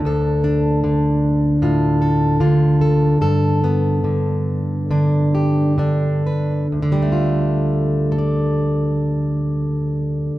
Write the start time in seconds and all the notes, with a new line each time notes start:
Already playing: D3
0.05 D2 A4
0.44 D4
0.84 D3
1.62 A2 F4
2.02 A4
2.40 D3 F4
2.81 A4
3.21 G2 A4
3.64 B3
4.04 D3
4.91 D3 D4
5.35 G4
5.78 D3 D4
6.27 B4
6.72 D2
6.82 D3
6.92 G3
7.02 A3
7.12 F4
8.12 A4
8.18 D5